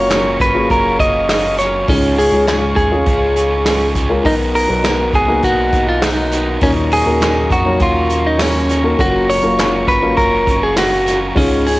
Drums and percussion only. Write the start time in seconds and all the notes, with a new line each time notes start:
0.10 snare, clap, hi-hat pedal, open hi-hat, tambourine
0.40 kick, hi-hat pedal, open hi-hat
0.70 kick, hi-hat pedal, open hi-hat
0.99 kick, hi-hat pedal, open hi-hat
1.29 snare, clap, hi-hat pedal, open hi-hat, tambourine
1.58 snare, hi-hat pedal, open hi-hat
1.88 kick, hi-hat pedal, open hi-hat
2.19 hi-hat pedal, open hi-hat
2.47 snare, clap, hi-hat pedal, open hi-hat, tambourine
2.76 kick, hi-hat pedal, open hi-hat
3.06 kick, hi-hat pedal, open hi-hat
3.36 hi-hat pedal, open hi-hat
3.66 snare, clap, hi-hat pedal, open hi-hat, tambourine
3.95 kick, snare, hi-hat pedal, open hi-hat
4.25 kick, hi-hat pedal, open hi-hat
4.55 hi-hat pedal, open hi-hat
4.84 snare, clap, hi-hat pedal, open hi-hat, tambourine
5.13 kick, hi-hat pedal, open hi-hat
5.43 kick, hi-hat pedal, open hi-hat
5.72 kick, hi-hat pedal, open hi-hat
6.02 snare, clap, hi-hat pedal, open hi-hat, tambourine
6.31 snare, hi-hat pedal, open hi-hat
6.61 kick, hi-hat pedal, open hi-hat
6.91 hi-hat pedal, open hi-hat
7.21 snare, clap, hi-hat pedal, open hi-hat, tambourine
7.50 kick, hi-hat pedal, open hi-hat
7.80 kick, hi-hat pedal, open hi-hat
8.09 hi-hat pedal, open hi-hat
8.39 snare, clap, hi-hat pedal, open hi-hat, tambourine
8.69 snare, hi-hat pedal, open hi-hat
8.99 kick, hi-hat pedal, open hi-hat
9.29 hi-hat pedal, open hi-hat
9.58 snare, clap, hi-hat pedal, open hi-hat, tambourine
9.88 kick, hi-hat pedal, open hi-hat
10.17 kick, hi-hat pedal, open hi-hat
10.47 kick, hi-hat pedal, open hi-hat
10.76 snare, clap, hi-hat pedal, open hi-hat, tambourine
11.07 snare, hi-hat pedal, open hi-hat
11.36 kick, hi-hat pedal, open hi-hat
11.66 hi-hat pedal, open hi-hat